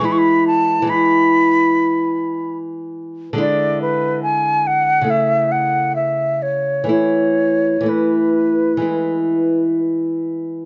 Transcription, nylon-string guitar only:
\new Staff \with { instrumentName = "Nylon-string guitar" } { \clef bass \time 4/4 \key e \mixolydian \tempo 4 = 70 <e gis e'>4 <e gis e'>2. | <d gis e'>2 <cis a e'>2 | <e a e'>4 <e a e'>4 <e gis e'>2 | }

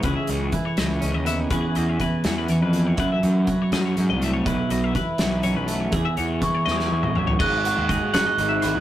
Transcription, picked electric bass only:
\new Staff \with { instrumentName = "Picked electric bass" } { \clef bass \time 6/8 \key e \major \tempo 4. = 81 cis,16 r16 cis,8 r8 cis,8 cis,16 dis,8. | e,16 r16 e,8 r8 e,8 e,16 f,8. | fis,16 r16 fis,8 r8 fis,8 fis,16 c,8. | b,,16 r16 b,,8 r8 b,,8 b,,16 b,,8. |
e,16 r16 e,8 r8 e,8 e,16 a,,8. | gis,,8. dis,8 r16 fis,,16 r16 gis,,8 gis,,16 e,16 | }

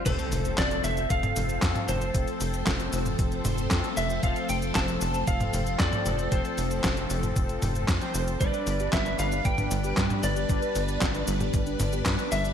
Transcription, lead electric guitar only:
\new Staff \with { instrumentName = "Lead electric guitar" } { \time 4/4 \key f \lydian \tempo 4 = 115 c''4 d''8 e''8 f''4. c''8~ | c''4. r2 e''8 | f''8 g''8 a''4 f''4 d''4 | c''2.~ c''8 r8 |
d''4 e''8 f''8 g''4. d''8~ | d''4. r2 e''8 | }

